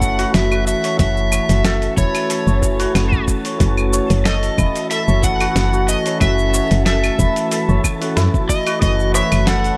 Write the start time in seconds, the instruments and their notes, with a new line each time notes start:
Already playing: fm bass F#1, ambient pad E3 A3 C#4 F#4, tine electric piano C#4 F#4, santur E4 F#4 A4 C#5, synth texture A4 A5, electric slide guitar F#5
0.00 tine electric piano E3 A3 C#4 F#4, kick, shaker
0.19 santur F#4, open hi-hat, shaker
0.34 fm bass F#1, electric slide guitar E5, snare, open hi-hat, shaker
0.51 santur F#4, claves, shaker
0.67 electric slide guitar E5, shaker
0.84 santur C#5, open hi-hat, shaker
0.97 fm bass F#1, tine electric piano E3 A3 C#4, santur F#4, electric slide guitar E5, kick, open hi-hat, shaker
1.01 tine electric piano F#4
1.17 shaker
1.32 santur C#5, claves, shaker
1.49 fm bass F#1, open hi-hat, shaker
1.65 santur A4, snare, open hi-hat, shaker
1.82 open hi-hat, shaker
1.96 fm bass E1, tine electric piano E3 A3 C#4 F#4, santur E4, electric slide guitar C#5, kick, shaker
2.15 open hi-hat, claves, shaker
2.30 santur A4, open hi-hat, shaker
2.47 fm bass F#1, santur C#5, shaker
2.61 tine electric piano E3 A3 C#4 F#4, kick, shaker
2.79 santur F#4, open hi-hat, shaker
2.95 fm bass F#1, snare, open hi-hat, claves, shaker
3.12 santur F#4, kick, shaker
3.28 kick, shaker
3.45 santur C#5, open hi-hat, shaker
3.58 fm bass F#1, tine electric piano E3 A3 C#4 F#4, santur F#4, kick, open hi-hat, shaker
3.77 claves, shaker
3.93 santur C#5, shaker
4.10 fm bass F#1, open hi-hat, shaker
4.25 santur A4, electric slide guitar D#5, snare, open hi-hat, shaker
4.43 open hi-hat, shaker
4.57 fm bass E1, tine electric piano E3 A3 C#4 F#4, santur E4, kick, claves, shaker
4.76 open hi-hat, shaker
4.91 santur A4, electric slide guitar E5, open hi-hat, shaker
5.08 fm bass F#1, santur C#5, shaker
5.21 tine electric piano E3 A3 C#4, electric slide guitar F#5, kick, shaker
5.26 tine electric piano F#4
5.40 santur F#4, open hi-hat, claves, shaker
5.56 fm bass F#1, snare, open hi-hat, shaker
5.73 santur F#4, shaker
5.88 electric slide guitar D#5, shaker
6.06 santur C#5, open hi-hat, shaker
6.19 fm bass F#1, tine electric piano E3 A3 C#4 F#4, santur F#4, electric slide guitar E5, kick, open hi-hat, claves, shaker
6.39 shaker
6.54 santur C#5, shaker
6.71 fm bass F#1, open hi-hat, shaker
6.86 santur A4, electric slide guitar E5, snare, open hi-hat, shaker
7.04 open hi-hat, claves, shaker
7.18 fm bass E1, tine electric piano E3 A3 C#4 F#4, santur E4, kick, shaker
7.36 open hi-hat, shaker
7.51 santur A4, open hi-hat, shaker
7.69 fm bass F#1, santur C#5, shaker
7.84 kick, claves, shaker
8.00 tine electric piano E3 A3 C#4 A4, santur F#4, open hi-hat, shaker
8.16 fm bass F#2, santur E4, snare, open hi-hat, shaker
8.34 santur E4, kick, shaker
8.49 electric slide guitar D#5, kick, shaker
8.66 santur F#4, open hi-hat, claves, shaker
8.80 fm bass F#1, tine electric piano E3 A3 C#4 F#4, santur F#4, ambient pad B4 C#5, electric slide guitar D#5, synth texture D#6, kick, open hi-hat, shaker
9.00 shaker
9.14 santur C#5, electric slide guitar E5, darbuka ka, darbuka tek, shaker
9.32 fm bass F#1, open hi-hat, claves, shaker
9.47 santur A4, electric slide guitar F#5, snare, open hi-hat, shaker
9.64 open hi-hat, shaker